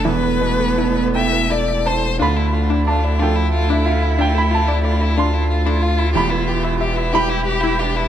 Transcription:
X:1
M:6/8
L:1/16
Q:3/8=61
K:Ddor
V:1 name="Upright piano"
z6 g4 a2 | b4 a2 g3 e f2 | g b a4 c'6 | b6 b6 |]
V:2 name="Upright piano"
E,,2 B,,2 A,2 E2 A2 E2 | D,,6 [F,DA]6- | [F,DA]12 | E,,6 [G,EG]6 |]
V:3 name="Analog synth pad"
[A,EA]12 | [A,DA]12- | [A,DA]12 | [GBe]12 |]
V:4 name="Synth pluck"
E B B A E B A B E e B z | D A F D d d D z2 D F z | D A F D d d D z2 D F z | E B G E e e E z2 E G z |]
V:5 name="Violin"
B6 e2 d2 c2 | F E F E F E F E F E F E | F E F E F E F E F E F E | G E G E G E G E G E G E |]
V:6 name="Cello"
B,8- B,2 z2 | D6 E6- | E6 F6- | F6 G2 G2 D2 |]
V:7 name="Sub bass" clef=bass
E,,,12 | D,,12- | D,,12 | E,,,12 |]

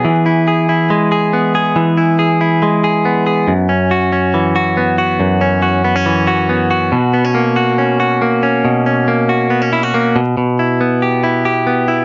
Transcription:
X:1
M:4/4
L:1/16
Q:1/4=140
K:F#mix
V:1 name="Clean electric guitar"
E,2 E2 G2 E2 G,2 G2 B,2 G2 | E,2 E2 G2 E2 G,2 G2 B,2 G2 | F,,2 C2 F2 C2 E,2 F2 B,2 F2 | F,,2 C2 F2 B, C E,2 F2 B,2 F2 |
B,,2 B, C A,2 F2 C2 F2 A,2 C2 | B,,2 C2 A,2 F2 B, C E F A,2 B,,2 | B,,2 E2 B,2 =G2 E2 G2 B,2 E2 |]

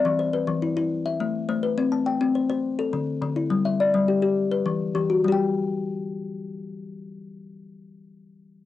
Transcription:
X:1
M:12/8
L:1/8
Q:3/8=138
K:Em
V:1 name="Kalimba"
[de] c B2 E3 e3 c B- | B a g2 c3 A3 z E- | E e d2 G3 B3 G F- | F z8 z3 |
z12 |]
V:2 name="Kalimba" clef=bass
E,2 z E,2 E z2 A,2 A,2 | C2 z C2 c z2 D,2 D,2 | G,2 z G,2 G z2 E,2 E,2 | [G,Gg]12- |
[G,Gg]12 |]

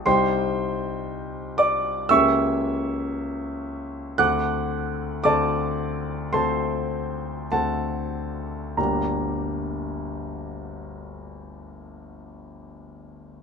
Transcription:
X:1
M:4/4
L:1/8
Q:1/4=53
K:Gm
V:1 name="Grand piano"
[cgc']3 [dd'] [=e^c'=e']4 | [^fd'^f']2 [dad']2 [cac']2 [Afa]2 | [G,,,D,,G,B,DGb]8 |]
V:2 name="Grand piano"
[C,,G,EG]4 [^C,,^A,^CG]4 | [D,,A,CA]2 [D,,A,CA]2 [D,,A,CA]2 [D,,A,C]2 | z8 |]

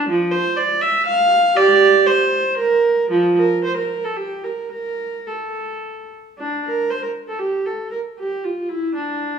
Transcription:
X:1
M:3/4
L:1/16
Q:1/4=116
K:Dm
V:1 name="Viola"
F,2 c2 d2 e2 f4 | [Gd]4 c4 B4 | F,2 B2 c B2 A G2 B2 | B4 A6 z2 |
D2 B2 c B2 A G2 A2 | B2 G2 F2 E2 D4 |]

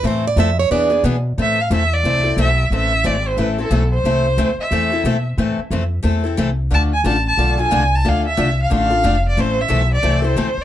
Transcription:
X:1
M:4/4
L:1/16
Q:"Swing" 1/4=180
K:Am
V:1 name="Violin"
z16 | e2 f2 e2 d6 e4 | e4 d2 c2 B2 A4 c2- | c6 e8 z2 |
z16 | a2 ^g2 a2 a4 g4 a2 | f2 e4 f2 f6 d2 | c2 e4 d4 c4 z2 |]
V:2 name="Steel-string acoustic guitar"
c2 d2 e2 ^c2 d4 z4 | z16 | z16 | z16 |
z16 | z16 | z16 | z16 |]
V:3 name="Steel-string acoustic guitar"
[E,A,CEA]2 z2 [E,A,CEA] z3 [E,B,D^G]2 [B,DG]2 [E,B,DG] z3 | [E,A,CEA]2 z2 [E,A,CEA] z3 [E,A,CEA]2 [CEA]2 [E,A,CEA] z3 | [E,A,CEA]2 z2 [E,A,CEA] z3 [E,A,CEA]2 [CEA]2 [E,A,CEA] z3 | [E,A,CEA]2 z2 [E,A,CEA] z3 [E,A,CEA]2 [CEA]2 [E,A,CEA] z3 |
[E,A,CEA]2 z2 [E,A,CEA] z3 [E,A,CEA]2 [CEA]2 [E,A,CEA] z3 | [D,A,DFA]2 z2 [D,A,DFA]2 z2 [D,A,DFA]2 [DFA]2 [D,A,DFA]2 z2 | [D,A,DFA]2 z2 [D,A,DFA]2 z2 [D,A,DFA]2 [DFA]2 [D,A,DFA]2 z2 | [E,A,CEA]2 z2 [E,A,CEA]2 z2 [E,A,CEA]2 [CEA]2 [E,A,CEA]2 z2 |]
V:4 name="Upright bass" clef=bass
A,,4 F,,4 E,,4 B,,4 | A,,4 E,,4 C,,4 B,,,4 | A,,,4 ^G,,,4 A,,,4 B,,,4 | C,,4 D,,2 z2 E,,4 B,,4 |
A,,2 z2 F,,4 E,,4 C,,4 | D,,4 A,,,4 B,,,4 C,,4 | D,,4 C,,4 A,,,4 F,,,4 | A,,,4 B,,,4 C,,4 D,,2 z2 |]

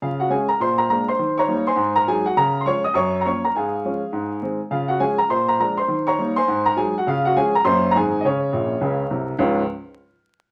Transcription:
X:1
M:4/4
L:1/16
Q:"Swing" 1/4=205
K:Db
V:1 name="Upright piano"
[Ff]2 [Gg]2 [Aa]2 [Bb]2 [cc']2 [Bb]2 [Bb]2 [cc']2- | [cc']2 [dbd']4 [cac']4 [Bb]2 [Aa]2 [Gg]2 | [Bb]3 c' [dd']2 [ee']2 [dd']3 b [dd']2 [Bb]2 | [Afa]12- [Afa]2 z2 |
[Ff]2 [Gg]2 [Aa]2 [Bb]2 [cc']2 [Bb]2 [Bb]2 [cc']2- | [cc']2 [dbd']4 [cac']4 [Bb]2 [Aa]2 [Gg]2 | [Ff]2 [Gg]2 [Aa]2 [Bb]2 [cc']3 b [Aa]3 e | [DAd]12 z4 |
[D,,A,,F,A,DF]2 z12 z2 |]
V:2 name="Upright piano" clef=bass
D,4 [A,D]4 B,,4 [A,B,=D]4 | E,4 [=G,B,E]4 A,,4 [_G,A,E]4 | D,4 [F,A,D]4 G,,4 [F,B,D]4 | A,,4 [F,A,D]4 A,,4 [E,A,C]4 |
D,4 [F,A,D]4 B,,4 [F,A,=D]4 | E,4 [=G,B,E]4 A,,4 [_G,A,E]4 | D,4 [F,A,D]4 [G,,G,B,D]4 [A,,E,A,C]4 | D,4 [B,,,B,,]4 [D,,D,]4 [C,,C,]4 |
z16 |]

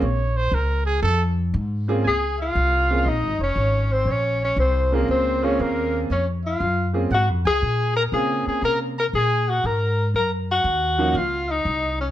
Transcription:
X:1
M:4/4
L:1/16
Q:"Swing" 1/4=119
K:Bbm
V:1 name="Trumpet"
d2 c2 B2 A2 =A2 z6 | a2 f6 e2 d4 c2 | d2 d2 c2 B2 c2 d2 B3 z | d2 f4 z2 g2 a4 b2 |
a2 a2 b2 b2 a2 g2 b3 z | b2 g6 f2 e4 d2 |]
V:2 name="Tenor saxophone"
z16 | A2 F6 E2 D4 C2 | D2 D2 C2 B,2 C2 D2 B,3 z | D2 F4 z2 G2 A4 B2 |
A2 A2 B2 B2 A2 G2 B3 z | B2 G6 F2 E4 D2 |]
V:3 name="Upright piano"
z12 z2 [B,CDFA]2 | z6 [B,CDFA]2 z8 | z6 [B,CDFA]4 [B,CDFA]6 | z6 [B,CDFA]2 z8 |
[B,CDFA]6 z8 z2 | z6 [F,B,DEG]2 z8 |]
V:4 name="Upright bass" clef=bass
B,,,4 D,,4 F,,4 A,,4 | D,,4 C,,4 (3B,,,2 A,,,2 F,,,2 A,,,4 | B,,,4 C,,4 D,,4 E,,4 | F,,4 G,,4 (3A,,2 F,,2 D,,2 B,,4 |
D,2 z2 C,4 B,,4 A,,4 | G,,4 E,,4 D,,4 C,,4 |]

